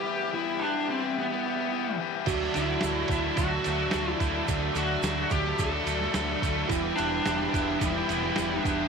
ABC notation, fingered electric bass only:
X:1
M:4/4
L:1/8
Q:1/4=108
K:Em
V:1 name="Fingered electric bass" clef=bass
z8 | D,, D,, D,, D,, D,, D,, D,, D,, | D,, D,, D,, D,, D,, D,, D,, D,, | E,,, E,,, E,,, E,,, E,,, E,,, E,,, E,,, |]